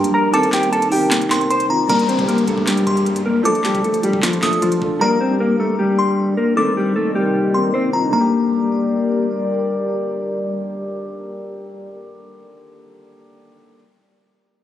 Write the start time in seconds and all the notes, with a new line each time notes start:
Already playing: G3 A#3 D4 G4 A#4 G5
0.04 A#1, closed hi-hat
0.14 A#4 A#5
0.32 C3 D#3 A#3 C4 D#4 A4 A#4 A5 D6, closed hi-hat
0.43 closed hi-hat
0.52 G4 G5, snare, clap, closed hi-hat
0.63 closed hi-hat
0.72 A4 A5, closed hi-hat
0.82 closed hi-hat
0.90 D#3 C4 G4 A#4 G5, open hi-hat
1.11 snare, clap, closed hi-hat
1.21 closed hi-hat
1.29 D#3 C4 A#4 C6, snare, clap, closed hi-hat
1.41 closed hi-hat
1.50 C5 C6, closed hi-hat
1.60 closed hi-hat
1.68 D#3 C4 F4 A#5
1.87 G2 G3 A#3 D4 A#4 A#5, kick, closed hi-hat, downlifter
1.99 closed hi-hat
2.09 C4 C5, closed hi-hat
2.17 G3 D4 G4, kick, closed hi-hat
2.28 A#3 A#4, closed hi-hat
2.38 closed hi-hat
2.48 A3 A4, kick, closed hi-hat
2.58 kick
2.67 G3 G4, snare, clap, closed hi-hat
2.77 closed hi-hat
2.87 C6, kick, closed hi-hat
2.97 closed hi-hat
3.06 closed hi-hat
3.16 closed hi-hat
3.26 A#3 A#4
3.43 D2 D3 F3 A3 D4 F4 A4 D6, closed hi-hat
3.55 closed hi-hat
3.64 G3 G4, snare, clap, closed hi-hat
3.75 kick, closed hi-hat
3.84 A3 A4, closed hi-hat
3.94 closed hi-hat
4.02 F3 G3 D4 G4 A4, closed hi-hat
4.13 kick
4.23 F3 F4, snare, clap, closed hi-hat
4.33 closed hi-hat
4.41 F3 A3 D4 A4 D#6, kick, snare, clap, closed hi-hat
4.53 closed hi-hat
4.62 F3 F4, closed hi-hat
4.72 closed hi-hat
4.80 F3 D4 A4, kick
4.99 G2 G3 A#3 D4 A#4 A#5
5.21 C4 C5
5.28 G3 D4 G4
5.40 A#3 A#4
5.60 A3 A4
5.79 G3 G4
5.99 C6
6.37 A#3 A#4
6.56 C3 D#3 A3 A#3 C4 D#4 A4 A#4 D6
6.77 G3 G4
6.96 A3 A4
7.13 D#3 G3 C4 G4 A#4
7.52 D#3 C4 A#4 C6
7.74 C4 C5
7.91 D#3 C4 F4 A#5
8.05 D3
8.13 G3 A#3 G4 A#4 D5 A#5
8.21 G4